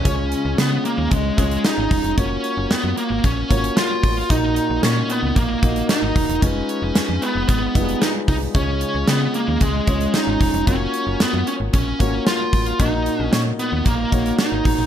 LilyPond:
<<
  \new Staff \with { instrumentName = "Grand piano" } { \time 4/4 \key cis \mixolydian \tempo 4 = 113 <gis cis' eis' cis''>4 r4. <gis cis' eis' cis''>4 r8 | <ais eis' fis' cis''>4 r4. <ais eis' fis' cis''>4 r8 | <ais dis' fis' dis''>4 r4. <ais dis' fis' dis''>4 r8 | <aes ees' f' ces''>4 r4. <g aes ees' f' ces''>4 r8 |
<gis cis' eis' cis''>4 r4. <gis cis' eis' cis''>4 r8 | <ais eis' fis' cis''>4 r4. <ais eis' fis' cis''>4 r8 | <ais dis' fis' dis''>4 r4. <ais dis' fis' cis''>4 r8 | }
  \new Staff \with { instrumentName = "Grand piano" } { \clef bass \time 4/4 \key cis \mixolydian cis4. r2 r8 | r1 | ais,4. r2 r8 | r1 |
cis4. r2 r8 | r1 | ais,4. r2 r8 | }
  \new Staff \with { instrumentName = "Lead electric guitar" } { \time 4/4 \key cis \mixolydian cis'4 b8 ais8 gis8 gis8 dis'4 | cis'4 b8 ais8 cis'4 eis'4 | dis'4 cis'8 b8 ais4 dis'4 | cis'4. ces'8 ces'4 ees'8 ees'8 |
cis'4 b8 ais8 gis4 dis'4 | cis'4 b8 cis'8 cis'4 eis'4 | dis'4 cis'8 b8 ais4 dis'4 | }
  \new Staff \with { instrumentName = "FM bass" } { \clef bass \time 4/4 \key cis \mixolydian cis,8. cis,16 cis8 r16 dis,16 cis,8 cis,8 r16 gis,,16 e,,16 eis,,16 | fis,,8 r16 fis,,16 fis,16 fis,16 r16 gis,,16 ais,,8 gis,,8 r8 a,,8 | ais,,8. ais,,16 ais,8 r16 cis,16 ais,,8 ais,,8 r16 gis,,16 dis,,16 e,,16 | f,,8 r16 f,,16 f,16 f,16 r16 f,,16 aes,,8 f,,8 r8 bis,,8 |
cis,8. cis,16 cis8 r16 dis,16 cis,8 cis,8 r16 gis,,16 e,,16 eis,,16 | fis,,8 r16 fis,,16 fis,16 fis,16 r16 gis,,16 ais,,8 gis,,8 r8 a,,8 | ais,,8. ais,,16 ais,8 r16 dis,16 ais,,8 ais,,8 r16 gis,,16 a,,16 ais,,16 | }
  \new DrumStaff \with { instrumentName = "Drums" } \drummode { \time 4/4 <hh bd>8 hh8 <hh sn>8 hh8 <hh bd>8 <hh bd>16 hh16 <hh sn>8 <hho bd>16 hh16 | <hh bd>8 hh8 <hh sn>8 hh8 <hh bd>8 <hh bd>16 hh16 <hh sn>8 <hho bd>8 | <hh bd>8 hh8 <hh sn>8 hh8 <hh bd>8 <hh bd>16 hh16 <hh sn>8 <hho bd>16 hh16 | <hh bd>8 hh8 <hh sn>8 hh8 <hh bd>8 <hh bd>16 hh16 <hh sn>8 <hho bd>8 |
<hh bd>8 hh8 <hh sn>8 hh8 <hh bd>8 <hh bd>16 hh16 <hh sn>8 <hho bd>16 hh16 | <hh bd>8 hh8 <hh sn>8 hh8 <hh bd>8 <hh bd>8 <hh sn>8 <hho bd>16 hh16 | <hh bd>8 hh8 <hh sn>8 hh8 <hh bd>8 <hh bd>16 hh16 <hh sn>8 <hho bd>8 | }
>>